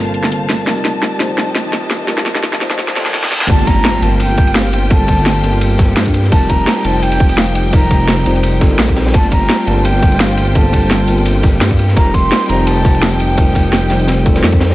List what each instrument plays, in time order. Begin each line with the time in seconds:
Already playing: detuned saw bass G1, tine electric piano G3 A#3 C4 F4 A4 A#4, string section C5 F5 A5, riser
0.14 closed hi-hat
0.23 snare
0.32 closed hi-hat
0.49 snare, closed hi-hat
0.65 detuned saw bass F1, tine electric piano G3 C4 D#4 F4, string section G4 D#5, snare, closed hi-hat
0.69 tine electric piano A#4
0.85 snare, closed hi-hat
1.03 snare, closed hi-hat
1.18 detuned saw bass F1, tine electric piano G3 C4 D#4 F4, snare, closed hi-hat
1.22 tine electric piano C5
1.38 snare, closed hi-hat
1.55 snare, closed hi-hat
1.73 snare, closed hi-hat
1.91 snare, closed hi-hat
2.06 tine electric piano G3 C4 D#4 F4, snare, closed hi-hat
2.11 tine electric piano A#4
2.18 snare
2.26 snare, closed hi-hat
2.35 snare
2.43 snare, closed hi-hat
2.53 snare
2.60 detuned saw bass F1, tine electric piano G3 C4 D#4 F4 C5, snare, closed hi-hat
2.71 snare
2.79 snare, closed hi-hat, reverse cymbal
2.88 snare
2.95 tine electric piano G3 C4 D#4 F4 A4, snare, closed hi-hat
3.04 tine electric piano G3 C4 D#4 F4, snare
3.08 tine electric piano A#4
3.14 detuned saw bass F2, snare, closed hi-hat
3.24 snare
3.32 snare, closed hi-hat
3.41 snare
3.47 detuned saw bass G1, tine electric piano G3 A#3 C4 F4, string section F4 G4 C5 G5, flute A5, kick, closed hi-hat, ride, crash, impact
3.52 tine electric piano A3
3.67 flute A#5, kick, closed hi-hat, ride
3.85 snare, closed hi-hat, open hi-hat
4.00 detuned saw bass G1, tine electric piano G3 A#3 C4 F4, flute A5, closed hi-hat, ride
4.04 tine electric piano A#4
4.20 flute G5, closed hi-hat, ride
4.38 kick, closed hi-hat, ride
4.47 ride
4.55 flute F5, snare, closed hi-hat, ride
4.65 snare
4.73 flute G5, closed hi-hat, ride
4.88 tine electric piano G3 A#3 C4 F4, flute A5, kick, closed hi-hat, ride
4.93 tine electric piano A4
5.08 kick, closed hi-hat, ride
5.26 snare, closed hi-hat, ride
5.41 detuned saw bass G1, tine electric piano G3 A#3 C4 F4, closed hi-hat, ride
5.46 tine electric piano A#4
5.53 ride
5.61 closed hi-hat, ride
5.79 kick, snare, closed hi-hat, ride
5.96 detuned saw bass G2, snare, closed hi-hat, ride
6.06 kick, ride
6.14 closed hi-hat, ride
6.24 snare
6.30 detuned saw bass F1, tine electric piano G3 C4 D#4 F4, string section D#4 G5, flute A5, kick, closed hi-hat, ride
6.34 tine electric piano A#4
6.49 flute A#5, kick, closed hi-hat, ride
6.67 snare, closed hi-hat, open hi-hat
6.83 detuned saw bass F1, tine electric piano G3 C4 D#4 F4, flute A5, closed hi-hat, ride
6.87 tine electric piano C5
7.02 flute G5, closed hi-hat, ride
7.12 ride
7.20 kick, closed hi-hat
7.29 ride
7.38 flute F5, snare, closed hi-hat, ride
7.55 flute G5, closed hi-hat, ride
7.71 tine electric piano G3 C4 D#4 F4, flute A#5, kick, closed hi-hat, ride
7.75 tine electric piano A#4
7.91 kick, closed hi-hat, ride
8.08 snare, closed hi-hat, ride
8.25 detuned saw bass F1, tine electric piano G3 C4 D#4 F4 C5, closed hi-hat, ride
8.36 ride
8.43 closed hi-hat, ride
8.60 detuned saw bass G1, tine electric piano G3 C4 D#4 F4 A4, kick, snare, closed hi-hat, ride
8.69 tine electric piano G3 C4 D#4 F4
8.73 tine electric piano A#4
8.79 detuned saw bass A#1, snare, closed hi-hat, ride
8.88 kick, ride
8.96 snare, closed hi-hat, open hi-hat
9.06 snare, open hi-hat
9.12 detuned saw bass G1, tine electric piano G3 A#3 C4 F4, string section F4 G4 C5 G5, flute A5, kick, closed hi-hat, ride
9.17 tine electric piano A3
9.31 flute A#5, kick, closed hi-hat, ride
9.50 snare, closed hi-hat, open hi-hat
9.65 detuned saw bass G1, tine electric piano G3 A#3 C4 F4, flute A5, closed hi-hat, ride
9.69 tine electric piano A#4
9.85 flute G5, closed hi-hat, ride
10.02 kick, closed hi-hat, ride
10.12 ride
10.20 flute F5, snare, closed hi-hat, ride
10.29 snare
10.37 flute G5, closed hi-hat, ride
10.53 tine electric piano G3 A#3 C4 F4, flute A5, kick, closed hi-hat, ride
10.57 tine electric piano A4
10.73 kick, closed hi-hat, ride
10.90 snare, closed hi-hat, ride
11.06 detuned saw bass G1, tine electric piano G3 A#3 C4 F4, closed hi-hat, ride
11.10 tine electric piano A#4
11.18 ride
11.25 closed hi-hat, ride
11.43 kick, snare, closed hi-hat, ride
11.61 detuned saw bass G2, snare, closed hi-hat, ride
11.71 kick, ride
11.79 closed hi-hat, ride
11.88 snare
11.94 detuned saw bass F1, tine electric piano G3 C4 D#4 F4, string section D#4 G5, flute A#5, kick, closed hi-hat, ride
11.99 tine electric piano A#4
12.14 flute C6, kick, closed hi-hat, ride
12.32 snare, closed hi-hat, open hi-hat
12.47 detuned saw bass F1, tine electric piano G3 C4 D#4 F4, flute A#5, closed hi-hat, ride
12.52 tine electric piano C5
12.66 flute A5, closed hi-hat, ride
12.85 kick, closed hi-hat, ride
12.94 ride
13.02 snare, closed hi-hat, ride
13.12 snare
13.19 flute G5, closed hi-hat, ride
13.35 tine electric piano G3 C4 D#4 F4, kick, closed hi-hat, ride
13.40 tine electric piano A#4
13.55 kick, closed hi-hat, ride
13.73 snare, closed hi-hat, ride
13.90 detuned saw bass F1, tine electric piano G3 C4 D#4 F4 C5, snare, closed hi-hat, ride
13.99 ride
14.08 snare, closed hi-hat, ride
14.17 ride
14.25 tine electric piano G3 C4 D#4 F4 A4, kick, closed hi-hat, ride
14.33 tine electric piano G3 C4 D#4 F4, snare, ride
14.38 tine electric piano A#4
14.43 detuned saw bass F2, snare, closed hi-hat, ride
14.52 kick, ride
14.60 snare, closed hi-hat, open hi-hat
14.71 snare, open hi-hat